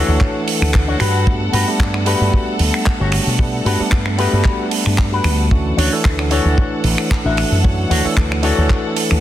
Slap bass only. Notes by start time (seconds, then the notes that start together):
0.08 D2
0.62 D2
1.01 G2
1.53 G2
1.80 G2
2.21 G2
2.60 D2
3.01 G1
3.27 B2
3.65 G2
3.80 muted slap bass stroke
3.92 G2
4.33 G2
4.86 G2
5.24 D2
5.78 D2
6.05 D2
6.45 D2
6.84 A1
7.25 A1
7.52 F#2
7.90 D2
8.05 muted slap bass stroke
8.17 D2
8.58 D2
9.11 D2